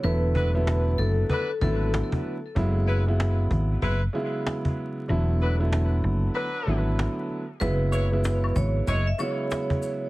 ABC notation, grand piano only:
X:1
M:4/4
L:1/16
Q:"Swing 16ths" 1/4=95
K:Elyd
V:1 name="Grand piano" clef=bass
[=D,F,=A,B,E]3 [D,F,A,B,E]6 z [D,F,A,B,E]4- [D,F,A,B,E] z | [C,F,G,B,E]3 [C,F,G,B,E]6 z [C,F,G,B,E]6 | [=D,F,=A,B,E]3 [D,F,A,B,E]6 z [D,F,A,B,E]4- [D,F,A,B,E] z | [C,F,G,B,E]3 [C,F,G,B,E]6 z [C,F,G,B,E]6 |]